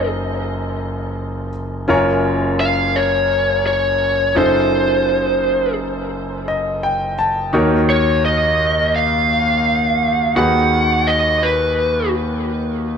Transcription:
Already playing: F#1 F#2 D#4 F4 A4 C5
1.88 F#1 F#2 C#4 F4 A#4 C#5
2.60 F5
2.96 C#5
3.67 C#5
4.35 F#1 F#2 D#4 F4 A4 C5
6.48 D#5
6.83 G5
7.19 A5
7.53 D#2 D#3 D#4 F#4 A#4 C#5
7.90 C#5
8.25 D#5
8.96 F5
10.35 D#2 D#3 D#4 F#4 G#4 B4 F#5
11.07 D#5
11.43 B4

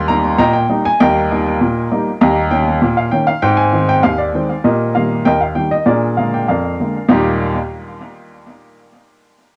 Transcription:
Already playing: D#2 C6
0.08 G3 A#3 D#4 A#5
0.38 A#2 D#5 G5 A#5
0.53 G5
0.69 G3 A#3 D#4
0.85 G#5
1.00 D#2 G3 A#4 D#5 G5
1.31 G3 A#3 D#4
1.61 A#2
1.91 G3 A#3 D#4
2.21 D#2 G3 D#5 G5 A#5
2.51 D#3 A#3 C#4 G5
2.82 A#2
2.97 F5
3.12 D#3 A#3 C#4 G5
3.27 F5
3.42 G#2 C4 G5
3.57 G#5
3.73 D#3 G#3 C4
3.89 G5
4.03 D#2 F5
4.18 D5
4.35 D#3 G#3 C4
4.64 A#2 G4 A#4 D#5
4.95 D#3 G3 A#3 F5
5.25 D#2 A#4 D#5 G5
5.41 F5
5.55 D#3 G3 A#3 G5
5.71 D#5
5.86 A#2 D4 G#4 A#4 D5
6.17 D3 G#3 A#3 F5
6.34 G5
6.48 F2 A#4 D5 F5
6.80 D3 G#3 A#3
7.09 D#2 A#2 G3 A#3 D#4 G4 D#5

